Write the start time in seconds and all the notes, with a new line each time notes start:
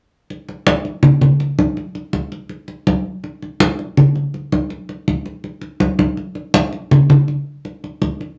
0.30 high conga
0.49 high conga
0.67 high conga
0.85 high conga
1.03 high conga, low conga
1.21 high conga, low conga
1.40 high conga
1.59 high conga
1.77 high conga
1.95 high conga
2.13 high conga
2.32 high conga
2.49 high conga
2.68 high conga
2.87 high conga
3.24 high conga
3.42 high conga
3.60 high conga
3.79 high conga
3.97 high conga, low conga
4.15 high conga
4.34 high conga
4.52 high conga
4.70 high conga
4.89 high conga
5.08 high conga
5.26 high conga
5.44 high conga
5.62 high conga
5.80 high conga
5.99 high conga
6.17 high conga
6.35 high conga
6.54 high conga
6.73 high conga
6.91 high conga, low conga
7.10 high conga, low conga
7.28 high conga
7.65 high conga
7.84 high conga
8.02 high conga
8.21 high conga